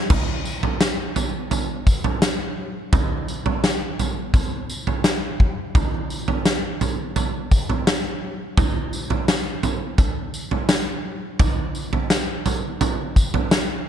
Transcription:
0.10 kick, floor tom, crash, tambourine
0.45 tambourine
0.63 floor tom
0.81 snare, tambourine
1.16 floor tom, tambourine
1.51 floor tom, tambourine
1.87 kick, tambourine
2.04 floor tom
2.22 snare, tambourine
2.93 kick, floor tom, tambourine
3.28 tambourine
3.46 floor tom
3.64 snare, tambourine
3.99 floor tom, tambourine
4.34 kick, floor tom, tambourine
4.70 tambourine
4.87 floor tom
5.04 snare, tambourine
5.40 kick
5.75 kick, floor tom, tambourine
6.10 tambourine
6.28 floor tom
6.45 snare, tambourine
6.81 floor tom, tambourine
7.16 floor tom, tambourine
7.51 kick, tambourine
7.70 floor tom
7.87 snare, tambourine
8.57 kick, floor tom, tambourine
8.93 tambourine
9.10 floor tom
9.28 snare, tambourine
9.63 floor tom, tambourine
9.98 kick, floor tom, tambourine
10.34 tambourine
10.51 floor tom
10.69 snare, tambourine
11.39 kick, floor tom, tambourine
11.75 tambourine
11.93 floor tom
12.10 snare, tambourine
12.46 floor tom, tambourine
12.81 floor tom, tambourine
13.16 kick, tambourine
13.34 floor tom
13.51 snare, tambourine

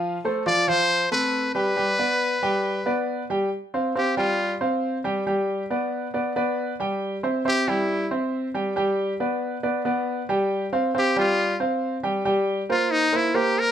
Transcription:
Already playing: F3 F4 F5
0.25 A3 A4 C5
0.46 F3 F4 D5 F5
0.68 F3 F4 C5 F5
1.12 A3 C4 A4 B4
1.55 G3 G4 B4 G5
1.76 G3 G4 G5
1.99 B3 B4 D5
2.43 G3 G4 G5
2.86 B3 B4 D5
3.30 G3 G4 G5
3.74 C4 C5 F5
3.95 C4 G4 C5 F5
4.17 G3 F4 G4 G5
4.61 C4 C5 F5
5.04 G3 G4 G5
5.27 G3 G4 G5
5.71 B3 B4 D5
6.14 B3 B4 D5
6.36 B3 B4 D5
6.80 G3 G4 G5
7.23 C4 C5 E5
7.45 C4 G4 C5 E5
7.68 G3 E4 G4 G5
8.11 C4 C5 E5
8.54 G3 G4 G5
8.76 G3 G4 G5
9.20 B3 B4 D5
9.63 B3 B4 D5
9.85 B3 B4 D5
10.29 G3 G4 G5
10.73 C4 C5 F5
10.95 C4 G4 C5 F5
11.16 G3 F4 G4 G5
11.60 C4 C5 F5
12.03 G3 G4 G5
12.25 G3 G4 G5
12.69 A#3 F4 A#4 C5
12.91 D#4
13.12 A#3 E4 A#4 C5
13.34 A#3 G4 A#4 C5
13.59 A#4

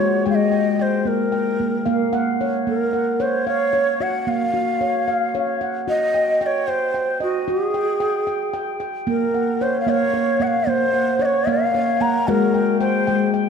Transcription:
Already playing: G#3 G4 C#5
0.00 F#4
0.26 G#3 G5
0.30 F5
0.35 D#5
0.52 G5
0.79 C5 G5
1.05 A#3 A#4
1.32 G5
1.60 A#3
1.86 A#3 F5
2.13 F5 F#5
2.41 C#5
2.67 A#3 A#4
2.93 F#5
3.20 C5 C#5
3.47 C#5 F5
3.73 C#5
4.00 F#4 F#5
4.27 A#3 F5
4.54 F#4
4.81 C#5
5.08 F5
5.35 C#5
5.61 F#5
5.88 F#4 D#5
6.14 G5
6.41 D#5 G5
6.46 C#5
6.68 C5 G5
6.94 G5
7.20 F#4 D#5
7.48 F#4 G#4
7.74 G5
8.00 G5
8.27 G5
8.53 G5
8.80 G5
9.07 A#3 A#4
9.34 F#5
9.61 C5 C#5
9.81 F5
9.86 A#3 C#5 F5
10.14 C#5
10.40 A#3 F#5
10.47 F5
10.67 A#3 C5
10.94 F#5
11.19 C#5 D#5
11.25 C#5
11.47 A#3 F5
11.74 C#5
12.01 A#3 F#5 A#5
12.28 G#3 F#4 A#4
12.54 G5
12.81 C5 G5
13.07 G#3 G5
13.34 G5

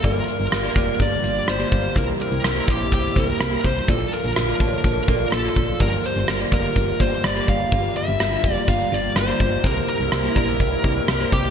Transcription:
Already playing: G2 D3 G3 A#3 F4 G4 A#4 D5 E5
0.03 G1 G2 A#3 F4 G4 A#4 D5, kick, closed hi-hat
0.28 closed hi-hat
0.40 G1
0.52 G1, cross-stick, closed hi-hat
0.63 A#3 F4 G4 D5
0.74 F1 A#3 F4 G4 D5, kick, closed hi-hat
1.00 G1 D5, kick, closed hi-hat
1.23 G1 A#3 F4 G4 D5, closed hi-hat
1.48 G1 C5, cross-stick, closed hi-hat
1.59 A#3 F4 G4 D5
1.72 G1, kick, closed hi-hat
1.95 C2 C3 A#3 E4 G4 A#4 C5, kick, closed hi-hat
2.20 A#4, closed hi-hat
2.32 C2, closed hi-hat
2.44 C2 A#4, cross-stick, closed hi-hat
2.55 A#3 E4 G4 C5
2.67 A#1 A#3 E4 G4 C5, kick, closed hi-hat
2.92 C2 G4, kick, closed hi-hat
3.15 C2 A#3 E4 G4 A#4 C5, kick, closed hi-hat
3.40 C2, cross-stick, closed hi-hat
3.51 A#3 E4 G4 C5
3.64 C2 C5, kick, closed hi-hat
3.88 A#1 A#2 D3 F3 A#3 F4 A4 D5, kick, closed hi-hat
4.12 A#4, closed hi-hat
4.24 A#1, closed hi-hat
4.36 A#1, cross-stick, closed hi-hat
4.48 A#3 F4 A4 D5
4.60 A1 A#3 F4 C#5 A5, kick, closed hi-hat
4.67 D5
4.84 A#1, kick, closed hi-hat
5.08 A#1 A#3 F4 A4 D5, kick, closed hi-hat
5.32 A#1 A4, cross-stick, closed hi-hat
5.44 A#3 F4 A4 D5
5.56 A#1, kick, closed hi-hat
5.80 G1 G2 G3 A#3 F4 G4 A#4 D5, kick, closed hi-hat
6.04 C5, closed hi-hat
6.16 G1
6.28 G1 A#4, cross-stick, closed hi-hat
6.40 A#3 F4 G4 D5
6.51 F1 A#3 F4 G4 A#4 D5, kick, closed hi-hat
6.76 G1, kick, closed hi-hat
7.00 G1 A#3 F4 G4 C5 D5, kick, closed hi-hat
7.24 G1 D5, cross-stick, closed hi-hat
7.35 A#3 F4 G4 D5
7.48 G1 F5, kick, closed hi-hat
7.72 G1 G2 A#3 F4 G4 D5, kick, closed hi-hat
7.96 E5, closed hi-hat
8.08 G1
8.20 G1, cross-stick, closed hi-hat
8.32 A#3 F4 G4 F5
8.44 F1 A#3 F4 G4 D5, kick, closed hi-hat
8.52 D5
8.56 closed hi-hat
8.68 G1 F5, kick, closed hi-hat
8.92 G1 A#3 F4 G4 D5, closed hi-hat
9.16 G1 C5, cross-stick, closed hi-hat
9.28 A#3 F4 G4 D5
9.40 G1, kick, closed hi-hat
9.64 C2 C3 A#3 E4 G4 A#4 C5, kick, closed hi-hat
9.88 A#4, closed hi-hat
10.00 C2
10.12 C2, cross-stick, closed hi-hat
10.24 A#3 E4 G4 C5
10.35 A#1 A#3 E4 G4 A#4 D5, kick, closed hi-hat
10.49 closed hi-hat
10.60 C2, kick, closed hi-hat
10.84 C2 A#3 E4 G4 D5, kick, closed hi-hat
11.08 C2, cross-stick, closed hi-hat
11.20 A#3 E4 G4 C5
11.32 C2 G4, kick, closed hi-hat

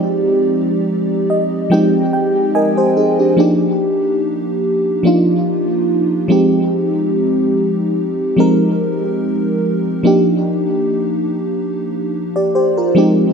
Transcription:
Already playing: F3 G#3 C4 D#4 G4 D5
1.30 D#5
1.70 F3 G#3 C4 D#4 G4 G5
2.13 G5
2.55 A#4 D#5 G#5
2.77 G4 C5
2.97 D#4 G#4
3.19 D4 G4
3.37 F3 A#3 D4 D#4 G4
5.03 F3 A#3 D4 D#4 F4
6.28 F3 G#3 C4 D#4 G4
8.36 F3 G#3 C4 D#4 A#4
10.03 F3 A#3 D4 D#4 G4
12.36 G4 D5
12.55 G4 C5
12.77 F4 A#4
12.95 F3 G#3 C4 D#4 G4

